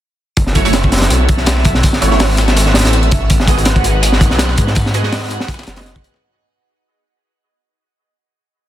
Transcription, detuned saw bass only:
0.37 F#1
1.10 B1
2.02 G#1
2.85 A1
3.12 G#1
4.31 B1
4.58 G#2
5.67 F#1

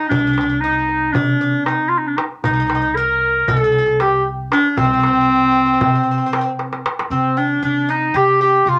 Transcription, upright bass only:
0.11 C2
1.14 C3
2.44 C2
3.48 C2
4.77 C2
5.81 C3
7.10 C3
7.63 C3
8.14 C3
8.66 C3

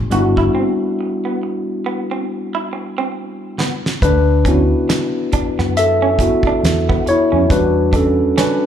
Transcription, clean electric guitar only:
0.12 F#4
0.38 E4
0.55 C4
1.01 muted clean electric guitar stroke
1.25 B3
1.43 muted clean electric guitar stroke
1.86 B3
2.11 C4
2.55 E4
2.73 muted clean electric guitar stroke
2.98 C4
3.59 B3
4.02 A3
4.46 C#4
4.89 muted clean electric guitar stroke
5.33 D4
5.59 B3
6.02 C#4
6.20 muted clean electric guitar stroke
6.47 D4
6.89 B3
7.06 muted clean electric guitar stroke
7.32 C#4
7.93 D4
8.38 C#4

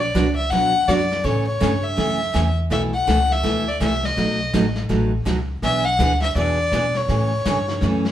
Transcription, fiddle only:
0.00 D5
0.36 E5
0.50 F#5
0.88 D5
1.24 C#5
1.47 C#5
1.83 E5
2.72 E5
2.94 F#5
3.32 E5
3.68 D5
3.82 E5
4.05 D#5
5.64 E5
5.85 F#5
6.22 E5
6.37 D5
6.96 C#5

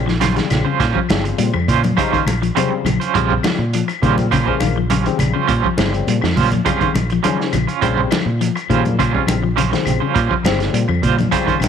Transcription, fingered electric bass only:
Already playing: A#1
0.51 A#1
0.80 A#2
1.09 G1
1.39 A#2
1.54 F2
1.68 A#2
2.26 A#1
2.85 A#1
3.15 A#1
3.59 A#2
4.02 A#2
4.61 A#1
5.21 A#1
5.49 A#2
5.78 G1
6.07 A#2
6.23 F2
6.37 A#2
6.95 A#1
7.53 A#1
7.82 A#1
8.26 A#2
8.70 A#2
9.27 A#1
9.86 A#1
10.16 A#2
10.44 G1
10.73 A#2
10.89 F2
11.03 A#2
11.61 A#1

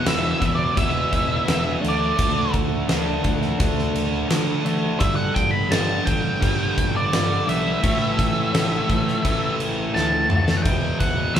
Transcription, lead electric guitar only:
0.07 E5
0.31 E5
0.55 D5
0.78 E5
1.51 E5
1.89 D5
5.00 E5
5.16 F#5
5.34 G5
5.51 B5
5.71 A5
6.06 G5
6.96 D5
7.49 E5
9.94 A5
10.57 F#5
10.62 G5
11.00 F#5
11.34 E5

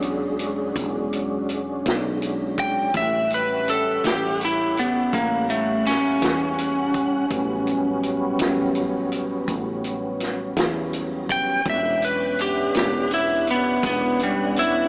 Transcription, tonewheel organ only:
Already playing: F#3 G#3 C#4 D4
2.93 G3 C#4 F#5
7.30 F#3 G3 B3 C#4
11.65 B3 C#4 D4 F#5

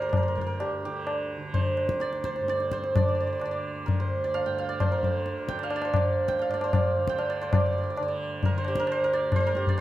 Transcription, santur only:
Already playing: G4 C5 D5
0.02 A#4
0.09 A#4
0.17 A#4
0.23 A#4
0.28 A#4
0.35 A#4
0.41 A#4
0.47 A#4
0.60 G4
0.85 G4
1.54 C5
2.01 D5
2.25 C5
2.49 D5
2.73 C5
2.97 D5
3.03 D5
3.08 D5
3.15 D5
3.20 D5
3.27 D5
3.33 D5
3.39 D5
3.45 D5
3.51 D5
3.86 A#4
4.00 C5
4.24 D5
4.34 F5
4.46 G5
4.58 F5
4.69 D5
4.80 C5
4.92 A#4
5.04 D5
5.49 G5
5.63 F5
5.76 D5
5.85 C5
5.96 D5
6.28 G5
6.42 F5
6.54 D5
6.64 C5
6.75 D5
7.09 G5
7.18 F5
7.30 D5
7.42 C5
7.54 D5
7.60 D5
7.66 D5
7.73 D5
7.78 D5
7.84 D5
7.90 D5
7.96 D5
8.03 D5
8.08 D5
8.45 A#4
8.58 C5
8.68 G4
8.80 A#4
8.92 C5
9.04 A#4
9.13 D5
9.36 C5
9.40 C5
9.47 A#4
9.57 G4
9.69 D5

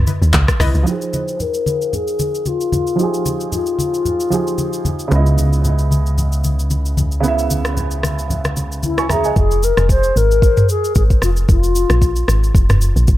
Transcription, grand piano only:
0.83 F3 D#4
0.88 G#4 G5
2.96 F3 D#4
3.01 G4 G#4
4.30 F3 D#4 G4 G#4
5.08 C#3 B3
5.13 E4 D#5
7.20 C#3 B3
7.25 E4 E5
8.98 G#5 C#6
9.10 E5 A#5
9.25 D#5 G#5

